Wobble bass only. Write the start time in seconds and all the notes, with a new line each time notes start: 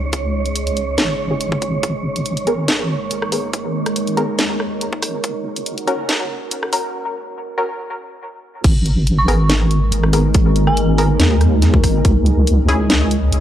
Already playing: C#2
0.98 G#1
1.83 G#1
2.47 G#1
3.11 G#1
4.39 D#2
5.03 G#1
5.24 F#1
5.87 F#1
6.51 F#1
8.64 G#1
9.28 G#1
9.92 G#1
11.20 D#2
11.84 G#1
12.05 C#2
12.69 C#2
13.32 C#2